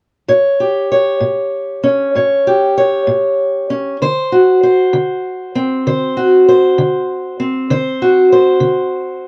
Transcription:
0.28 A2 C#5
0.60 G4
0.92 C#5
1.20 A2
1.84 C#4
2.15 A2 C#5
2.47 G4
2.78 C#5
3.07 A2
3.70 C#4
4.02 D3 C5
4.32 F#4
4.63 C5
4.93 D3
5.55 C4
5.87 D3 C5
6.17 F#4
6.48 C5
6.78 D3
7.40 C4
7.70 D3 C5
8.02 F#4
8.32 C5
8.60 D3

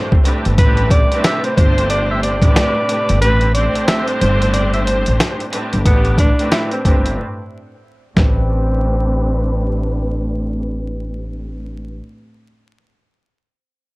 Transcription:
Already playing: A2 C3 G3 A3 C4 D4 G4 C5
0.12 kick
0.24 A2 A3 C4 D4 G4 B4, closed hi-hat
0.45 G1, closed hi-hat
0.57 A1 A2 C3 A3 C4 D4 G4 B4, kick, closed hi-hat
0.77 closed hi-hat
0.90 D5, kick, closed hi-hat
1.12 A2 A3 C4 D4 G4 B4, closed hi-hat
1.24 E5, snare, closed hi-hat
1.44 C5, closed hi-hat
1.56 G1 A2 A3 C4 D4 G4 C5, kick, closed hi-hat
1.78 closed hi-hat
1.90 D5, closed hi-hat
2.11 E5
2.23 D5, closed hi-hat
2.42 A1 A2 A3 C4 D4 G4 B4, kick, closed hi-hat
2.56 snare, closed hi-hat
2.89 closed hi-hat
3.09 G1, closed hi-hat
3.20 A1 A2 A3 C4 D4 G4 B4, closed hi-hat
3.41 closed hi-hat
3.54 A2 A3 C4 D4 G4 C5 D5, closed hi-hat
3.75 closed hi-hat
3.88 E5, snare, closed hi-hat
4.08 C5, closed hi-hat
4.21 G1 C5, closed hi-hat
4.42 closed hi-hat
4.53 D5, closed hi-hat
4.74 E5, closed hi-hat
4.86 C5, closed hi-hat
5.06 A1, closed hi-hat
5.20 snare, closed hi-hat
5.40 closed hi-hat
5.51 A2 A3 C4 D4 G4 B4, closed hi-hat
5.73 G1, closed hi-hat
5.86 A1 A2 C3 A3 B3 D4 G4 B4, kick, closed hi-hat
6.05 closed hi-hat
6.18 D4, kick, closed hi-hat
6.39 A2 A3 C4 D4 G4 B4, closed hi-hat
6.51 E4, snare, closed hi-hat
6.71 C4, closed hi-hat
6.85 G1 A2 A3 C4 D4 G4 B4, kick, closed hi-hat
7.06 closed hi-hat
8.16 A1 A2 A3 C4 D4 G4 B4, kick, snare

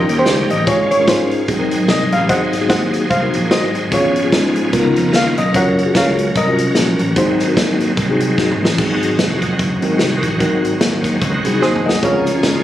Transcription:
Already playing: D#3 G3 A#3 C#4 D#4 G4 A#4 C#5 D#5 C6
0.09 D#2, closed hi-hat
0.18 G4 C5
0.26 C#2, snare, closed hi-hat
0.50 A1 D#5, closed hi-hat
0.67 G#1 G#2 G#3 C#4 F4 G#4 C#5, kick, closed hi-hat
0.91 C#5, closed hi-hat
0.99 G#3 C#4 F4 A#4
1.07 G#2 F4 G#4 C5, kick, snare, closed hi-hat
1.31 closed hi-hat
1.48 G#1 G#2 F#3 G#3 C4 D#4 F#4 G#4, kick, closed hi-hat
1.59 F#3 C4 D#4 A#4
1.71 closed hi-hat
1.88 C2 D#5, kick, snare, closed hi-hat
2.12 A1 F5, closed hi-hat
2.29 G#1 C4 D#4 F#4 G#4 C5 D#5 F#5, kick, closed hi-hat
2.52 snare, closed hi-hat
2.61 B3 D#4 F#4 G#4
2.66 C4 C5 D#5
2.70 D#2 F#5, kick, snare, closed hi-hat
2.93 snare, closed hi-hat
3.10 C2 G#2 C5 F5, kick, closed hi-hat
3.21 C4 D#4 F#4 A#4
3.34 A#1, closed hi-hat
3.51 G#1 F#4 C5 D#5, snare, closed hi-hat
3.75 closed hi-hat
3.91 G#1 G#2 F3 B3 C#4 F4 G#4 C#5, kick, closed hi-hat
4.16 closed hi-hat
4.24 B3 C#4 F4 G#4
4.32 G#2, kick, snare, closed hi-hat
4.56 closed hi-hat
4.73 C#2 C#3 D#3 B3 D#4 F4 A#4, kick, closed hi-hat
4.85 B3 D#4 F4 A#4
4.96 F2, closed hi-hat
5.13 D#2 F5, snare, closed hi-hat
5.37 B1 D#5, closed hi-hat
5.54 F#1 F#3 C#4 F4 F#4 A#4 C#5 F#5, kick, closed hi-hat
5.79 closed hi-hat
5.86 C#4 F4 F#4 G#4
5.95 C#2 A#4 C#5 F5, kick, snare, closed hi-hat
6.19 closed hi-hat
6.35 C2 A#4 D#5, kick, closed hi-hat
6.46 C#4 F4 F#4 A4
6.51 A#4
6.58 closed hi-hat
6.75 A#1, snare, closed hi-hat
6.98 A1, closed hi-hat
7.16 G#1 G#2 D#3 G#3 C4 D#4 F#4 G#4 C5, kick, closed hi-hat
7.39 snare, closed hi-hat
7.48 C4 D#4 F#4 A#4
7.57 D#2, kick, snare, closed hi-hat
7.80 snare, closed hi-hat
7.97 C2, kick, closed hi-hat
8.09 C4 D#4 F#4 G#4
8.20 closed hi-hat
8.38 G#1, kick, snare
8.52 mid tom
8.61 A1
8.65 snare
8.78 G#1 G#2 D#3 F#3 G#3 C4 D#4 F#4 G#4, kick, crash
9.02 closed hi-hat
9.19 F1, snare, closed hi-hat
9.42 kick, closed hi-hat
9.59 F#1, kick, closed hi-hat
9.82 G#1 C4 D#4 F#4 A#4, closed hi-hat
9.99 C2, snare, closed hi-hat
10.23 A1, kick, closed hi-hat
10.40 G#1 G#2 C4 D#4 F#4 A#4, kick, closed hi-hat
10.65 closed hi-hat
10.81 D#2, snare, closed hi-hat
11.04 kick, snare, closed hi-hat
11.21 C#2, kick, closed hi-hat
11.45 C2 C4 D#4 F#4 G#4, closed hi-hat
11.62 D#2 F#4 G#4 C5 D#5, snare
11.76 mid tom
11.85 D2 A#4 D#5 F#5, snare
12.02 C#2 C#3 F3 G#3 C4 C#4 F4 G#4 A#4 C#5, kick, closed hi-hat
12.25 snare, closed hi-hat
12.34 G#3 C#4 E4 G#4
12.39 F4, snare, closed hi-hat
12.43 G#1, kick

